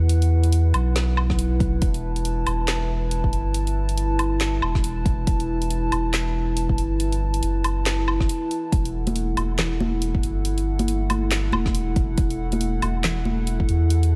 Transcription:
Already playing: E2 E4 B4 F#5
0.09 closed hi-hat
0.22 closed hi-hat
0.43 closed hi-hat
0.52 closed hi-hat
0.74 B1, closed hi-hat, low woodblock
0.96 snare, closed hi-hat
1.17 low woodblock
1.30 kick, snare
1.39 closed hi-hat
1.60 kick, closed hi-hat
1.82 E1 A5, kick, closed hi-hat
1.94 closed hi-hat
2.16 closed hi-hat
2.25 closed hi-hat
2.47 E1, closed hi-hat, low woodblock
2.68 snare, clap, closed hi-hat
3.11 closed hi-hat
3.24 kick
3.33 G1, closed hi-hat
3.54 closed hi-hat
3.67 closed hi-hat
3.89 closed hi-hat
3.98 closed hi-hat
4.19 closed hi-hat, low woodblock
4.41 snare, clap, closed hi-hat
4.62 E1, low woodblock
4.75 kick, snare
4.84 closed hi-hat
5.06 kick, closed hi-hat
5.27 E1, kick, closed hi-hat
5.40 closed hi-hat
5.62 closed hi-hat
5.70 closed hi-hat
5.92 E1, closed hi-hat, low woodblock
6.14 snare, clap, closed hi-hat
6.57 closed hi-hat
6.69 kick
6.78 G1, closed hi-hat
7.00 closed hi-hat
7.12 closed hi-hat
7.34 closed hi-hat
7.43 F#1, closed hi-hat
7.64 closed hi-hat, low woodblock
7.86 snare, clap, closed hi-hat
8.08 low woodblock
8.20 kick, snare
8.29 closed hi-hat
8.51 closed hi-hat
8.72 E1 A4 F#5, kick, closed hi-hat
8.85 closed hi-hat
9.07 closed hi-hat, high conga
9.16 closed hi-hat
9.37 E1, closed hi-hat, high conga, low woodblock
9.58 snare, clap, closed hi-hat, low conga
9.80 high conga
10.02 closed hi-hat
10.15 kick
10.23 G1, closed hi-hat
10.45 closed hi-hat
10.58 closed hi-hat
10.79 closed hi-hat, high conga
10.88 closed hi-hat
11.10 closed hi-hat, high conga, low woodblock
11.31 snare, clap, closed hi-hat
11.52 E1, high conga, low woodblock
11.66 kick, snare
11.75 closed hi-hat
11.96 kick, closed hi-hat
12.18 E1, kick, closed hi-hat
12.30 closed hi-hat
12.52 closed hi-hat, high conga
12.61 closed hi-hat
12.82 E1, closed hi-hat, high conga, low woodblock
13.04 snare, clap, closed hi-hat, low conga
13.25 high conga
13.47 closed hi-hat
13.60 kick
13.69 E2, closed hi-hat
13.90 closed hi-hat
14.03 closed hi-hat

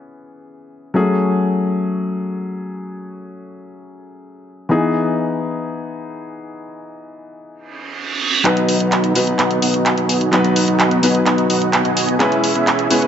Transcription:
Already playing: E3 B3 C#4 G#4
0.94 F#3 A3 C#4 G#4
4.69 E3 B3 D#4 G#4
7.51 reverse cymbal
8.44 B1 F#3 B3 D#4 F#4 B4 D#5 F#5, clap, closed hi-hat
8.57 closed hi-hat
8.69 open hi-hat
8.80 B1 B3 D#4 F#4 D#5 F#5, closed hi-hat
8.92 clap, closed hi-hat
9.04 closed hi-hat
9.14 B1 F#3 B3 D#4 F#4 B4 D#5 G#5, open hi-hat
9.27 closed hi-hat
9.39 B1 B3 D#4 F#4 D#5 F#5, clap, closed hi-hat
9.51 closed hi-hat
9.62 B1 B3 D#4 F#4 D#5 F#5, open hi-hat
9.74 closed hi-hat
9.86 clap, closed hi-hat
9.97 B1 B3 D#4 F#4 D#5 G#5, closed hi-hat
10.09 open hi-hat
10.21 closed hi-hat
10.31 B1 F#3 B3 D#4 F#4 B4 D#5 F#5, clap, closed hi-hat
10.44 closed hi-hat
10.56 open hi-hat
10.68 B1 B3 D#4 F#4 D#5 F#5, closed hi-hat
10.80 clap, closed hi-hat
10.91 closed hi-hat
11.02 F#3 B3 D#4 F#4 B4 D#5 G#5, open hi-hat
11.15 closed hi-hat
11.26 B1 B3 D#4 F#4 D#5 F#5, clap, closed hi-hat
11.38 closed hi-hat
11.50 B1 B3 D#4 F#4 D#5 F#5, open hi-hat
11.62 closed hi-hat
11.73 clap, closed hi-hat
11.85 B1 B3 D#4 F#4 D#5 G#5, closed hi-hat
11.97 open hi-hat
12.09 closed hi-hat
12.19 C#2 G#3 B3 C#4 E4 G#4 B4 C#5 E5, clap, closed hi-hat
12.32 closed hi-hat
12.44 open hi-hat
12.55 C#2 B3 E4 G#4 C#5 E5, closed hi-hat
12.67 clap, closed hi-hat
12.79 closed hi-hat
12.89 C#2 G#3 B3 C#4 E4 G#4 B4 C#5 F#5, open hi-hat
13.02 closed hi-hat

